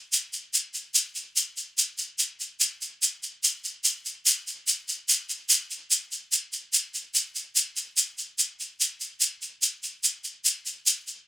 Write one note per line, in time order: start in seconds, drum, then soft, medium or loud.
0.13 shaker medium
0.33 shaker soft
0.54 shaker medium
0.74 shaker soft
0.95 shaker medium
1.15 shaker soft
1.37 shaker medium
1.57 shaker soft
1.78 shaker medium
1.98 shaker soft
2.19 shaker medium
2.40 shaker soft
2.61 shaker medium
2.82 shaker soft
3.03 shaker medium
3.23 shaker soft
3.44 shaker medium
3.64 shaker soft
3.84 shaker medium
4.06 shaker soft
4.26 shaker medium
4.47 shaker soft
4.68 shaker medium
4.88 shaker soft
5.09 shaker medium
5.30 shaker soft
5.50 shaker medium
5.71 shaker soft
5.91 shaker medium
6.12 shaker soft
6.32 shaker medium
6.53 shaker soft
6.73 shaker medium
6.95 shaker soft
7.15 shaker medium
7.36 shaker soft
7.56 shaker medium
7.77 shaker soft
7.97 shaker medium
8.18 shaker soft
8.39 shaker medium
8.60 shaker soft
8.81 shaker medium
9.01 shaker soft
9.21 shaker medium
9.42 shaker soft
9.62 shaker medium
9.83 shaker soft
10.04 shaker medium
10.24 shaker soft
10.45 shaker medium
10.66 shaker soft
10.87 shaker medium
11.07 shaker soft